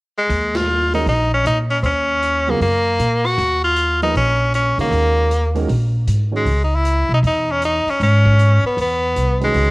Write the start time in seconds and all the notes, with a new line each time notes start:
0.17 G#3
0.29 D#2, open hi-hat
0.55 F4, snare, ride
0.93 D#3 G#3 C#4 D#4 F#4 A#4, open hi-hat
1.06 A#1 D#4, open hi-hat
1.34 C#4
1.45 A#2 D#4, closed hi-hat
1.70 C#4, open hi-hat
1.83 D#2 C4 C#4, open hi-hat
2.23 closed hi-hat
2.47 C#3 F#3 A#3 B3 F4 G#4
2.60 F#2 A#3, open hi-hat
2.99 A#2, closed hi-hat
3.25 F#4, open hi-hat
3.38 D#2, open hi-hat
3.64 F4
3.76 closed hi-hat
4.02 F3 A#3 D#4 G#4 B4, open hi-hat
4.14 A#1 C#4, open hi-hat
4.54 C#4, closed hi-hat
4.78 C#2 D#3 G#3 A#3 C#4 F#4 A#4, open hi-hat
4.91 D#2, open hi-hat
5.31 closed hi-hat
5.54 D#3 G#3 C#4 F#4 A#4, open hi-hat
5.68 A#1, open hi-hat
6.07 G#2, closed hi-hat
6.31 D#3 G#3 C#4 F#4 C#5
6.36 G#3
6.45 C#2, open hi-hat
6.64 D#4
6.75 E4
6.85 closed hi-hat
7.09 B1
7.14 D#4
7.23 E2, open hi-hat
7.27 D#4
7.52 C#4
7.62 D#4, closed hi-hat
7.86 C#4, muted upright bass stroke, open hi-hat
8.00 G#2 C#4, open hi-hat
8.26 kick
8.39 closed hi-hat
8.63 B3, muted upright bass stroke
8.77 E2, open hi-hat
8.81 B3
9.16 C2, closed hi-hat
9.41 D#3 G#3 C#4 F#4 B4, open hi-hat
9.54 C#2, open hi-hat